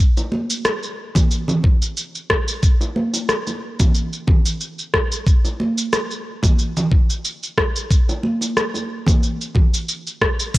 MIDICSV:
0, 0, Header, 1, 2, 480
1, 0, Start_track
1, 0, Tempo, 659341
1, 1915, Time_signature, 4, 2, 24, 8
1, 7702, End_track
2, 0, Start_track
2, 0, Title_t, "Drums"
2, 123, Note_on_c, 9, 82, 30
2, 126, Note_on_c, 9, 60, 52
2, 196, Note_off_c, 9, 82, 0
2, 199, Note_off_c, 9, 60, 0
2, 231, Note_on_c, 9, 63, 68
2, 304, Note_off_c, 9, 63, 0
2, 364, Note_on_c, 9, 82, 59
2, 437, Note_off_c, 9, 82, 0
2, 473, Note_on_c, 9, 37, 82
2, 473, Note_on_c, 9, 82, 52
2, 546, Note_off_c, 9, 37, 0
2, 546, Note_off_c, 9, 82, 0
2, 604, Note_on_c, 9, 82, 31
2, 677, Note_off_c, 9, 82, 0
2, 837, Note_on_c, 9, 64, 98
2, 843, Note_on_c, 9, 63, 75
2, 844, Note_on_c, 9, 82, 57
2, 846, Note_on_c, 9, 36, 97
2, 910, Note_off_c, 9, 64, 0
2, 916, Note_off_c, 9, 63, 0
2, 917, Note_off_c, 9, 82, 0
2, 919, Note_off_c, 9, 36, 0
2, 954, Note_on_c, 9, 82, 48
2, 1026, Note_off_c, 9, 82, 0
2, 1078, Note_on_c, 9, 64, 87
2, 1085, Note_on_c, 9, 82, 33
2, 1151, Note_off_c, 9, 64, 0
2, 1158, Note_off_c, 9, 82, 0
2, 1191, Note_on_c, 9, 60, 34
2, 1194, Note_on_c, 9, 36, 94
2, 1263, Note_off_c, 9, 60, 0
2, 1267, Note_off_c, 9, 36, 0
2, 1326, Note_on_c, 9, 82, 58
2, 1399, Note_off_c, 9, 82, 0
2, 1435, Note_on_c, 9, 82, 53
2, 1508, Note_off_c, 9, 82, 0
2, 1566, Note_on_c, 9, 82, 31
2, 1639, Note_off_c, 9, 82, 0
2, 1674, Note_on_c, 9, 36, 61
2, 1674, Note_on_c, 9, 37, 79
2, 1747, Note_off_c, 9, 36, 0
2, 1747, Note_off_c, 9, 37, 0
2, 1806, Note_on_c, 9, 82, 61
2, 1879, Note_off_c, 9, 82, 0
2, 1914, Note_on_c, 9, 36, 112
2, 1914, Note_on_c, 9, 82, 52
2, 1987, Note_off_c, 9, 36, 0
2, 1987, Note_off_c, 9, 82, 0
2, 2043, Note_on_c, 9, 60, 45
2, 2047, Note_on_c, 9, 82, 34
2, 2116, Note_off_c, 9, 60, 0
2, 2120, Note_off_c, 9, 82, 0
2, 2154, Note_on_c, 9, 63, 73
2, 2227, Note_off_c, 9, 63, 0
2, 2283, Note_on_c, 9, 60, 37
2, 2286, Note_on_c, 9, 82, 62
2, 2355, Note_off_c, 9, 60, 0
2, 2359, Note_off_c, 9, 82, 0
2, 2395, Note_on_c, 9, 37, 77
2, 2395, Note_on_c, 9, 82, 58
2, 2467, Note_off_c, 9, 37, 0
2, 2468, Note_off_c, 9, 82, 0
2, 2525, Note_on_c, 9, 60, 36
2, 2525, Note_on_c, 9, 82, 34
2, 2528, Note_on_c, 9, 63, 31
2, 2598, Note_off_c, 9, 60, 0
2, 2598, Note_off_c, 9, 82, 0
2, 2600, Note_off_c, 9, 63, 0
2, 2763, Note_on_c, 9, 63, 79
2, 2763, Note_on_c, 9, 82, 61
2, 2766, Note_on_c, 9, 36, 110
2, 2769, Note_on_c, 9, 64, 95
2, 2836, Note_off_c, 9, 63, 0
2, 2836, Note_off_c, 9, 82, 0
2, 2839, Note_off_c, 9, 36, 0
2, 2841, Note_off_c, 9, 64, 0
2, 2873, Note_on_c, 9, 82, 52
2, 2946, Note_off_c, 9, 82, 0
2, 3006, Note_on_c, 9, 82, 34
2, 3079, Note_off_c, 9, 82, 0
2, 3112, Note_on_c, 9, 64, 77
2, 3114, Note_on_c, 9, 36, 105
2, 3184, Note_off_c, 9, 64, 0
2, 3187, Note_off_c, 9, 36, 0
2, 3244, Note_on_c, 9, 82, 67
2, 3317, Note_off_c, 9, 82, 0
2, 3353, Note_on_c, 9, 82, 51
2, 3425, Note_off_c, 9, 82, 0
2, 3485, Note_on_c, 9, 82, 34
2, 3558, Note_off_c, 9, 82, 0
2, 3594, Note_on_c, 9, 36, 60
2, 3594, Note_on_c, 9, 37, 79
2, 3667, Note_off_c, 9, 36, 0
2, 3667, Note_off_c, 9, 37, 0
2, 3726, Note_on_c, 9, 82, 64
2, 3799, Note_off_c, 9, 82, 0
2, 3834, Note_on_c, 9, 36, 125
2, 3836, Note_on_c, 9, 82, 56
2, 3906, Note_off_c, 9, 36, 0
2, 3908, Note_off_c, 9, 82, 0
2, 3964, Note_on_c, 9, 60, 43
2, 3966, Note_on_c, 9, 82, 33
2, 4037, Note_off_c, 9, 60, 0
2, 4039, Note_off_c, 9, 82, 0
2, 4076, Note_on_c, 9, 63, 70
2, 4149, Note_off_c, 9, 63, 0
2, 4207, Note_on_c, 9, 82, 60
2, 4279, Note_off_c, 9, 82, 0
2, 4316, Note_on_c, 9, 37, 73
2, 4316, Note_on_c, 9, 82, 57
2, 4389, Note_off_c, 9, 37, 0
2, 4389, Note_off_c, 9, 82, 0
2, 4448, Note_on_c, 9, 82, 34
2, 4521, Note_off_c, 9, 82, 0
2, 4679, Note_on_c, 9, 64, 92
2, 4683, Note_on_c, 9, 63, 77
2, 4685, Note_on_c, 9, 36, 108
2, 4687, Note_on_c, 9, 82, 64
2, 4752, Note_off_c, 9, 64, 0
2, 4756, Note_off_c, 9, 63, 0
2, 4758, Note_off_c, 9, 36, 0
2, 4759, Note_off_c, 9, 82, 0
2, 4795, Note_on_c, 9, 82, 57
2, 4868, Note_off_c, 9, 82, 0
2, 4926, Note_on_c, 9, 82, 34
2, 4927, Note_on_c, 9, 64, 89
2, 4999, Note_off_c, 9, 82, 0
2, 5000, Note_off_c, 9, 64, 0
2, 5034, Note_on_c, 9, 36, 101
2, 5040, Note_on_c, 9, 60, 32
2, 5107, Note_off_c, 9, 36, 0
2, 5113, Note_off_c, 9, 60, 0
2, 5167, Note_on_c, 9, 82, 64
2, 5240, Note_off_c, 9, 82, 0
2, 5277, Note_on_c, 9, 82, 55
2, 5350, Note_off_c, 9, 82, 0
2, 5410, Note_on_c, 9, 82, 32
2, 5483, Note_off_c, 9, 82, 0
2, 5515, Note_on_c, 9, 36, 62
2, 5517, Note_on_c, 9, 37, 77
2, 5588, Note_off_c, 9, 36, 0
2, 5590, Note_off_c, 9, 37, 0
2, 5649, Note_on_c, 9, 82, 62
2, 5722, Note_off_c, 9, 82, 0
2, 5755, Note_on_c, 9, 36, 112
2, 5758, Note_on_c, 9, 82, 55
2, 5828, Note_off_c, 9, 36, 0
2, 5830, Note_off_c, 9, 82, 0
2, 5889, Note_on_c, 9, 82, 32
2, 5890, Note_on_c, 9, 60, 49
2, 5962, Note_off_c, 9, 82, 0
2, 5963, Note_off_c, 9, 60, 0
2, 5993, Note_on_c, 9, 63, 68
2, 6066, Note_off_c, 9, 63, 0
2, 6123, Note_on_c, 9, 60, 36
2, 6129, Note_on_c, 9, 82, 57
2, 6196, Note_off_c, 9, 60, 0
2, 6202, Note_off_c, 9, 82, 0
2, 6238, Note_on_c, 9, 37, 76
2, 6238, Note_on_c, 9, 82, 54
2, 6311, Note_off_c, 9, 37, 0
2, 6311, Note_off_c, 9, 82, 0
2, 6364, Note_on_c, 9, 60, 30
2, 6369, Note_on_c, 9, 63, 34
2, 6371, Note_on_c, 9, 82, 35
2, 6436, Note_off_c, 9, 60, 0
2, 6442, Note_off_c, 9, 63, 0
2, 6443, Note_off_c, 9, 82, 0
2, 6599, Note_on_c, 9, 64, 94
2, 6608, Note_on_c, 9, 36, 105
2, 6608, Note_on_c, 9, 63, 82
2, 6610, Note_on_c, 9, 82, 58
2, 6672, Note_off_c, 9, 64, 0
2, 6680, Note_off_c, 9, 36, 0
2, 6680, Note_off_c, 9, 63, 0
2, 6683, Note_off_c, 9, 82, 0
2, 6719, Note_on_c, 9, 82, 52
2, 6792, Note_off_c, 9, 82, 0
2, 6851, Note_on_c, 9, 82, 32
2, 6924, Note_off_c, 9, 82, 0
2, 6950, Note_on_c, 9, 64, 75
2, 6956, Note_on_c, 9, 36, 99
2, 7023, Note_off_c, 9, 64, 0
2, 7029, Note_off_c, 9, 36, 0
2, 7089, Note_on_c, 9, 82, 64
2, 7162, Note_off_c, 9, 82, 0
2, 7198, Note_on_c, 9, 82, 58
2, 7270, Note_off_c, 9, 82, 0
2, 7330, Note_on_c, 9, 82, 33
2, 7403, Note_off_c, 9, 82, 0
2, 7436, Note_on_c, 9, 36, 61
2, 7438, Note_on_c, 9, 37, 73
2, 7509, Note_off_c, 9, 36, 0
2, 7510, Note_off_c, 9, 37, 0
2, 7569, Note_on_c, 9, 82, 64
2, 7642, Note_off_c, 9, 82, 0
2, 7676, Note_on_c, 9, 36, 118
2, 7677, Note_on_c, 9, 46, 51
2, 7677, Note_on_c, 9, 82, 54
2, 7702, Note_off_c, 9, 36, 0
2, 7702, Note_off_c, 9, 46, 0
2, 7702, Note_off_c, 9, 82, 0
2, 7702, End_track
0, 0, End_of_file